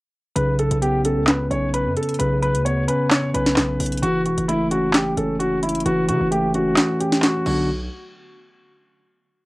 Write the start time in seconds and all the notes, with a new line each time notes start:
0.36 B1 C#3 B4, closed hi-hat
0.59 A4, closed hi-hat
0.71 B1, closed hi-hat
0.82 B3 G4, closed hi-hat
1.05 C#4 A4, closed hi-hat
1.17 C#2
1.27 B4, snare, clap, closed hi-hat
1.51 B1 C#4 C#5, closed hi-hat
1.74 B4, closed hi-hat
1.86 F#2
1.97 A4, closed hi-hat
2.03 closed hi-hat
2.09 closed hi-hat
2.14 closed hi-hat
2.19 B1 C#3 B4, closed hi-hat
2.42 B4, closed hi-hat
2.54 D2, closed hi-hat
2.65 B3 C#5, closed hi-hat
2.88 C#4 B4, closed hi-hat
3.10 C#5, snare, clap, closed hi-hat
3.34 B1 C#4 B4, closed hi-hat
3.46 snare
3.56 B1, snare, clap, closed hi-hat
3.80 B1, closed hi-hat, open hi-hat
3.86 closed hi-hat
3.92 closed hi-hat
3.97 closed hi-hat
4.02 F#1 E3 F#4, closed hi-hat
4.26 E1 F#4, closed hi-hat
4.38 F#1, closed hi-hat
4.48 A3 E4, closed hi-hat
4.71 C#4 F#4, closed hi-hat
4.93 G4, snare, clap, closed hi-hat
5.17 F#1 C#4 A4, closed hi-hat
5.39 F#4, closed hi-hat
5.63 E4, closed hi-hat
5.69 closed hi-hat
5.75 closed hi-hat
5.80 closed hi-hat
5.86 F#1 E3 F#4, closed hi-hat
6.09 C#3 F#4, closed hi-hat
6.21 F#1
6.31 A3 G4, closed hi-hat
6.54 C#4 F#4, closed hi-hat
6.77 snare, clap, closed hi-hat
7.00 C#4 G4, closed hi-hat
7.12 snare
7.22 F#4, snare, clap, closed hi-hat
7.46 B1 D3 F#3 B3 D4 F#4, crash